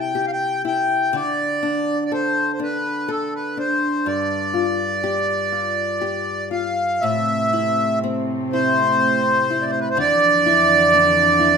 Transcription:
0.00 1.13 C3 medium
0.00 0.63 E4 soft
0.00 0.14 G4 medium
0.00 0.26 G5 medium
0.15 1.22 G4 medium
0.27 0.31 F5 medium
0.33 0.62 G5 medium
0.65 1.23 E4 soft
0.65 1.16 G5 medium
1.13 4.63 D3 medium
1.13 2.04 D5 medium
1.63 2.59 D4 medium
2.05 2.12 D5 medium
2.12 3.07 A4 medium
2.12 2.52 C5 medium
2.53 2.60 C5 medium
2.60 3.57 D4 medium
2.60 3.11 B4 medium
3.08 4.14 A4 medium
3.08 3.34 A4 medium
3.35 3.58 B4 medium
3.57 4.53 D4 soft
3.57 4.07 C5 medium
4.06 7.02 G2 medium
4.06 6.49 D5 medium
4.54 5.51 F4 soft
5.04 6.00 G4 medium
5.52 6.50 F4 soft
6.01 7.13 G4 soft
6.51 7.13 F4 soft
6.51 7.04 F5 medium
7.01 9.97 A2 medium
7.01 9.95 C3 medium
7.01 9.95 A3 medium
7.01 9.95 C4 medium
7.01 7.99 E5 medium
7.53 8.53 E4 soft
8.04 10.07 C4 medium
8.53 9.50 E4 soft
8.53 9.66 C5 medium
9.50 10.46 E4 soft
9.62 9.71 D5 medium
9.71 9.80 C5 medium
9.81 9.89 B4 medium
9.90 9.98 C5 medium
9.97 11.57 F2 medium
9.97 11.57 D3 medium
9.97 11.57 E3 medium
9.97 11.57 D5 loud
10.46 11.39 E4 soft
10.94 11.57 D4 medium
11.39 11.57 E4 medium

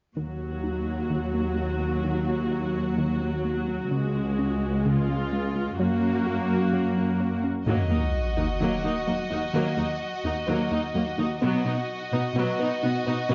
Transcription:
0.17 3.88 D#2 soft
0.17 0.31 D#3 medium
0.17 3.88 F#3 soft
0.17 4.82 F#4 soft
0.63 0.78 D#4 soft
1.10 1.24 D#3 medium
1.34 1.48 A#3 soft
1.57 1.71 A#3 soft
1.81 1.95 A#3 soft
2.04 2.18 D#3 medium
2.51 2.65 D#4 soft
2.98 3.12 D#3 medium
3.21 3.36 A#3 soft
3.45 3.59 A#3 soft
3.68 3.82 A#3 soft
3.91 5.76 C#2 soft
3.91 4.05 C#3 medium
3.91 5.79 G#3 soft
4.39 4.53 C#4 soft
4.85 5.00 C#3 medium
4.85 5.79 F4 soft
5.09 5.23 G#3 soft
5.33 5.47 G#3 soft
5.56 5.70 G#3 soft
5.79 7.44 F#2 soft
5.79 5.94 F#3 medium
5.79 7.43 A#3 soft
5.79 7.43 F#4 soft
6.26 6.40 F#4 medium
6.73 6.87 F#3 medium
6.97 7.11 C#4 soft
7.20 7.34 C#4 soft
7.43 7.58 C#4 soft
7.66 7.75 D#2 soft
7.66 7.81 D#3 medium
7.66 7.89 F#3 soft
7.66 7.89 A#3 soft
7.66 11.38 F#4 soft
7.66 11.37 D#5 soft
7.66 sub drop soft
7.90 7.99 D#2 soft
7.90 8.04 F#3 soft
7.90 7.98 A#3 soft
7.90 7.98 D#4 soft
8.37 8.46 D#2 soft
8.37 8.45 A#3 soft
8.37 8.45 D#4 soft
8.37 8.51 D#4 soft
8.60 8.69 D#2 soft
8.60 8.75 D#3 medium
8.60 8.82 F#3 soft
8.60 8.82 A#3 soft
8.84 8.93 D#2 soft
8.84 8.92 A#3 soft
8.84 8.98 D#4 soft
8.84 8.92 D#4 soft
9.07 9.16 D#2 soft
9.07 9.21 F#3 soft
9.07 9.15 A#3 soft
9.30 9.40 D#2 soft
9.30 9.39 A#3 soft
9.30 9.45 D#4 soft
9.30 9.39 D#4 soft
9.54 9.63 D#2 soft
9.54 9.68 D#3 medium
9.54 9.76 F#3 soft
9.54 9.76 A#3 soft
9.77 9.86 D#2 soft
9.77 9.92 F#3 soft
9.77 9.86 A#3 soft
9.77 9.85 D#4 soft
10.24 10.33 D#2 soft
10.24 10.33 A#3 soft
10.24 10.32 D#4 soft
10.24 10.39 D#4 soft
10.48 10.56 D#2 medium
10.48 10.62 D#3 medium
10.48 10.70 F#3 soft
10.48 10.70 A#3 soft
10.71 10.80 D#2 soft
10.71 10.79 A#3 soft
10.71 10.79 D#4 soft
10.71 10.85 D#4 soft
10.95 11.03 D#2 soft
10.95 11.09 F#3 medium
10.95 11.04 A#3 soft
11.18 11.26 D#2 soft
11.18 11.26 A#3 soft
11.18 11.26 D#4 soft
11.18 11.32 D#4 soft
11.42 11.50 B2 medium
11.42 11.64 F#3 medium
11.42 11.64 B3 medium
11.42 11.56 B3 medium
11.42 13.35 F#4 soft
11.42 13.35 D#5 soft
11.65 11.73 B2 soft
11.65 11.73 B3 soft
11.65 11.73 D#4 soft
11.65 11.79 D#4 medium
12.12 12.20 B2 soft
12.12 12.20 B3 soft
12.12 12.20 D#4 soft
12.12 12.27 B4 soft
12.35 12.43 B2 medium
12.35 12.58 F#3 medium
12.35 12.50 B3 medium
12.35 12.58 B3 soft
12.59 12.67 B2 soft
12.59 12.68 B3 soft
12.59 12.68 D#4 soft
12.59 12.73 B4 soft
12.82 12.90 B2 soft
12.82 12.91 B3 soft
12.82 12.97 D#4 soft
13.06 13.14 B2 soft
13.06 13.14 B3 soft
13.06 13.15 D#4 soft
13.06 13.20 B4 soft
13.29 13.35 B2 medium
13.29 13.35 F#3 medium
13.29 13.35 B3 medium

